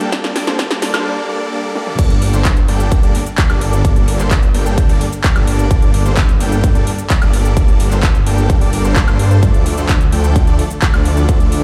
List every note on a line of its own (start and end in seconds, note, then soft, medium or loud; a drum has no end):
0.00 0.11 G3 medium
0.00 0.11 A#3 medium
0.00 0.11 D4 medium
0.00 0.11 A4 medium
0.00 0.11 G5 loud
0.00 closed hi-hat medium
0.12 0.45 G3 medium
0.12 0.45 A#3 medium
0.12 0.45 D4 medium
0.12 0.45 A4 medium
0.12 0.45 D5 medium
0.12 kick loud
0.12 snare loud
0.12 closed hi-hat medium
0.24 snare medium
0.24 closed hi-hat soft
0.36 snare medium
0.36 open hi-hat loud
0.47 0.57 G3 medium
0.47 0.57 A#3 medium
0.47 0.57 D4 medium
0.47 0.57 A4 medium
0.47 0.57 C5 medium
0.47 snare medium
0.47 closed hi-hat soft
0.59 0.91 G3 medium
0.59 0.91 A#3 medium
0.59 0.91 D4 medium
0.59 0.91 A4 medium
0.59 0.91 D5 medium
0.59 kick loud
0.59 snare loud
0.59 closed hi-hat medium
0.71 snare medium
0.71 closed hi-hat soft
0.82 snare loud
0.82 open hi-hat loud
0.94 1.04 G3 medium
0.94 1.04 A#3 medium
0.94 1.04 D4 medium
0.94 1.04 A4 medium
0.94 1.04 C5 medium
0.94 snare medium
0.94 closed hi-hat soft
0.94 high woodblock medium
1.06 1.27 G3 medium
1.06 1.27 A#3 medium
1.06 1.27 D4 medium
1.06 1.27 A4 medium
1.06 1.27 D5 medium
1.29 1.50 G3 medium
1.29 1.50 A#3 medium
1.29 1.50 D4 medium
1.29 1.50 A4 medium
1.29 1.50 D5 medium
1.52 1.73 G3 medium
1.52 1.73 A#3 medium
1.52 1.73 D4 medium
1.52 1.74 A4 medium
1.52 1.73 D5 medium
1.75 1.97 G3 medium
1.75 1.97 A#3 medium
1.75 1.97 D4 medium
1.75 1.97 A4 medium
1.75 1.97 D5 medium
1.75 high tom medium
1.87 mid tom medium
1.99 2.31 G1 loud
1.99 2.31 G3 medium
1.99 2.31 A#3 medium
1.99 2.31 D4 medium
1.99 2.31 A4 medium
1.99 2.31 D5 medium
1.99 kick loud
1.99 closed hi-hat loud
1.99 crash loud
1.99 cabasa medium
2.10 closed hi-hat soft
2.10 cabasa soft
2.22 open hi-hat loud
2.33 2.66 G1 loud
2.33 2.48 G3 medium
2.33 2.48 A#3 medium
2.33 2.48 D4 medium
2.33 2.48 A4 medium
2.33 2.48 C5 medium
2.33 closed hi-hat soft
2.33 cabasa medium
2.45 kick loud
2.45 clap loud
2.45 closed hi-hat loud
2.45 cabasa medium
2.57 closed hi-hat soft
2.57 cabasa soft
2.68 3.01 G1 loud
2.68 3.00 G3 loud
2.68 3.00 A#3 medium
2.68 3.00 D4 medium
2.68 3.00 A4 medium
2.68 3.00 G5 loud
2.68 open hi-hat loud
2.80 closed hi-hat soft
2.80 cabasa medium
2.92 kick loud
2.92 closed hi-hat loud
2.92 cabasa medium
3.03 3.16 G1 loud
3.03 3.18 G3 loud
3.03 3.18 A#3 medium
3.03 3.18 D4 medium
3.03 3.18 A4 medium
3.03 3.18 D5 loud
3.03 closed hi-hat soft
3.03 cabasa soft
3.15 open hi-hat loud
3.26 closed hi-hat soft
3.26 cabasa medium
3.38 kick loud
3.38 clap loud
3.38 closed hi-hat loud
3.38 cabasa medium
3.50 3.82 G1 loud
3.50 3.82 G3 medium
3.50 3.82 A#3 medium
3.50 3.82 D4 medium
3.50 3.82 A4 medium
3.50 3.82 D5 loud
3.50 closed hi-hat soft
3.50 cabasa soft
3.50 high woodblock medium
3.61 open hi-hat loud
3.73 closed hi-hat soft
3.73 cabasa medium
3.85 4.17 G1 loud
3.85 4.17 G3 medium
3.85 4.17 A#3 medium
3.85 4.17 D4 medium
3.85 4.17 A4 medium
3.85 4.17 D5 medium
3.85 kick loud
3.85 closed hi-hat medium
3.85 cabasa medium
3.96 closed hi-hat soft
3.96 cabasa soft
4.08 open hi-hat loud
4.19 4.52 G1 loud
4.19 4.34 G3 medium
4.19 4.34 A#3 medium
4.19 4.34 D4 medium
4.19 4.34 A4 medium
4.19 4.34 C5 medium
4.19 clap soft
4.19 closed hi-hat soft
4.19 cabasa medium
4.31 kick loud
4.31 clap loud
4.31 closed hi-hat loud
4.31 cabasa medium
4.43 closed hi-hat soft
4.43 cabasa soft
4.54 4.87 G1 loud
4.54 4.87 G3 loud
4.54 4.87 A#3 medium
4.54 4.87 D4 medium
4.54 4.87 A4 medium
4.54 4.87 G5 loud
4.54 open hi-hat loud
4.66 closed hi-hat soft
4.66 cabasa medium
4.78 kick loud
4.78 closed hi-hat medium
4.78 cabasa medium
4.89 5.02 G1 loud
4.89 5.04 G3 loud
4.89 5.04 A#3 medium
4.89 5.04 D4 medium
4.89 5.04 A4 medium
4.89 5.04 D5 loud
4.89 open hi-hat medium
4.89 cabasa soft
5.01 open hi-hat loud
5.13 closed hi-hat soft
5.13 cabasa medium
5.24 kick loud
5.24 clap loud
5.24 closed hi-hat medium
5.24 cabasa medium
5.36 5.68 G1 loud
5.36 5.68 G3 medium
5.36 5.68 A#3 medium
5.36 5.68 D4 medium
5.36 5.68 A4 medium
5.36 5.68 D5 medium
5.36 closed hi-hat soft
5.36 cabasa soft
5.36 high woodblock medium
5.47 open hi-hat loud
5.59 closed hi-hat soft
5.59 cabasa medium
5.71 6.03 G1 loud
5.71 6.03 G3 medium
5.71 6.03 A#3 medium
5.71 6.03 D4 medium
5.71 6.03 A4 medium
5.71 6.03 D5 medium
5.71 kick loud
5.71 closed hi-hat medium
5.71 cabasa medium
5.82 closed hi-hat soft
5.82 cabasa soft
5.94 open hi-hat loud
6.06 6.38 G1 loud
6.06 6.20 G3 medium
6.06 6.20 A#3 medium
6.06 6.20 D4 medium
6.06 6.20 A4 medium
6.06 6.20 C5 medium
6.06 closed hi-hat soft
6.06 cabasa medium
6.17 kick loud
6.17 clap loud
6.17 closed hi-hat medium
6.17 cabasa medium
6.29 closed hi-hat soft
6.29 cabasa soft
6.40 6.73 G1 medium
6.40 6.73 G3 loud
6.40 6.73 A#3 medium
6.40 6.73 D4 medium
6.40 6.73 A4 medium
6.40 6.73 G5 loud
6.40 open hi-hat loud
6.52 closed hi-hat soft
6.52 cabasa medium
6.64 kick loud
6.64 closed hi-hat medium
6.64 cabasa medium
6.75 6.88 G1 loud
6.75 6.90 G3 loud
6.75 6.90 A#3 medium
6.75 6.90 D4 loud
6.75 6.90 A4 loud
6.75 6.90 D5 loud
6.75 closed hi-hat soft
6.75 cabasa soft
6.87 open hi-hat loud
6.99 closed hi-hat soft
6.99 cabasa medium
7.10 kick loud
7.10 clap loud
7.10 closed hi-hat medium
7.10 cabasa medium
7.22 7.54 G1 loud
7.22 7.54 G3 medium
7.22 7.54 A#3 medium
7.22 7.54 D4 medium
7.22 7.54 A4 medium
7.22 7.54 D5 medium
7.22 closed hi-hat soft
7.22 cabasa soft
7.22 high woodblock medium
7.33 open hi-hat loud
7.45 closed hi-hat soft
7.45 cabasa medium
7.57 7.89 G1 loud
7.57 7.89 G3 medium
7.57 7.89 A#3 medium
7.57 7.89 D4 medium
7.57 7.89 A4 medium
7.57 7.89 D5 medium
7.57 kick loud
7.57 closed hi-hat medium
7.57 cabasa medium
7.68 closed hi-hat soft
7.68 cabasa soft
7.80 open hi-hat loud
7.91 8.24 G1 loud
7.91 8.06 G3 medium
7.91 8.06 A#3 medium
7.91 8.06 D4 medium
7.91 8.06 A4 medium
7.91 8.06 C5 medium
7.91 clap soft
7.91 closed hi-hat soft
7.91 cabasa medium
8.03 kick loud
8.03 clap loud
8.03 closed hi-hat medium
8.03 cabasa medium
8.15 closed hi-hat soft
8.15 cabasa soft
8.26 8.59 G1 loud
8.26 8.59 G3 medium
8.26 8.59 A#3 medium
8.26 8.59 D4 medium
8.26 8.59 A4 medium
8.26 8.59 G5 loud
8.26 open hi-hat loud
8.38 cabasa medium
8.50 kick loud
8.50 closed hi-hat medium
8.50 cabasa medium
8.61 8.71 G1 loud
8.61 8.71 G3 loud
8.61 8.71 A#3 medium
8.61 8.71 D4 loud
8.61 8.71 A4 loud
8.61 8.71 D5 loud
8.61 open hi-hat medium
8.61 cabasa soft
8.73 8.82 G1 medium
8.73 8.82 G3 medium
8.73 8.82 A#3 medium
8.73 8.82 D4 medium
8.73 8.82 A4 medium
8.73 8.82 D5 medium
8.73 open hi-hat loud
8.85 9.06 G1 loud
8.85 9.05 G3 loud
8.85 9.05 A#3 loud
8.85 9.05 D4 medium
8.85 9.05 A4 medium
8.85 9.05 C5 loud
8.85 cabasa medium
8.96 kick loud
8.96 clap loud
8.96 closed hi-hat medium
8.96 cabasa medium
9.08 9.40 G2 loud
9.08 9.40 G3 medium
9.08 9.40 A#3 medium
9.08 9.40 D4 medium
9.08 9.40 A4 medium
9.08 9.40 C5 medium
9.08 closed hi-hat soft
9.08 cabasa soft
9.08 high woodblock medium
9.19 open hi-hat loud
9.31 closed hi-hat soft
9.31 cabasa medium
9.43 9.75 D2 loud
9.43 9.75 F3 medium
9.43 9.75 A3 medium
9.43 9.75 D4 medium
9.43 9.75 A4 medium
9.43 9.75 D5 medium
9.43 kick loud
9.43 closed hi-hat medium
9.43 cabasa medium
9.54 closed hi-hat soft
9.54 cabasa soft
9.66 open hi-hat loud
9.78 10.10 D2 loud
9.78 9.93 F3 medium
9.78 9.93 A3 medium
9.78 9.93 D4 medium
9.78 9.93 A4 medium
9.78 9.93 C5 medium
9.78 cabasa medium
9.89 kick loud
9.89 clap loud
9.89 closed hi-hat medium
9.89 cabasa medium
10.01 closed hi-hat soft
10.01 cabasa soft
10.12 10.45 D2 medium
10.12 10.45 F3 medium
10.12 10.45 A3 medium
10.12 10.45 D4 medium
10.12 10.45 A4 medium
10.12 10.45 G5 loud
10.12 open hi-hat loud
10.24 cabasa medium
10.36 kick loud
10.36 closed hi-hat medium
10.36 cabasa medium
10.47 10.60 D2 loud
10.47 10.62 F3 loud
10.47 10.62 A3 loud
10.47 10.62 D4 medium
10.47 10.62 A4 loud
10.47 10.62 D5 loud
10.47 closed hi-hat soft
10.47 cabasa soft
10.59 open hi-hat loud
10.71 closed hi-hat soft
10.71 cabasa medium
10.82 kick loud
10.82 clap loud
10.82 closed hi-hat medium
10.82 cabasa medium
10.94 11.27 D2 loud
10.94 11.26 F3 medium
10.94 11.26 A3 medium
10.94 11.26 D4 medium
10.94 11.26 A4 medium
10.94 11.26 D5 medium
10.94 closed hi-hat soft
10.94 cabasa soft
10.94 high woodblock medium
11.05 open hi-hat loud
11.17 closed hi-hat soft
11.17 cabasa medium
11.29 11.61 D2 loud
11.29 11.61 F3 medium
11.29 11.61 A3 medium
11.29 11.61 D4 medium
11.29 11.61 A4 medium
11.29 11.61 D5 medium
11.29 kick loud
11.29 closed hi-hat loud
11.29 cabasa medium
11.40 closed hi-hat soft
11.40 cabasa soft
11.52 open hi-hat loud